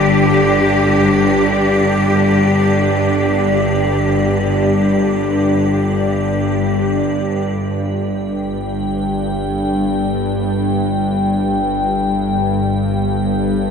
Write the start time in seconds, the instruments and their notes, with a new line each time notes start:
Already playing: synth drone G1 G2, cello section G2 D3 D4 G4, ambient pad D5
7.46 synth drone G1 G2, ambient pad G5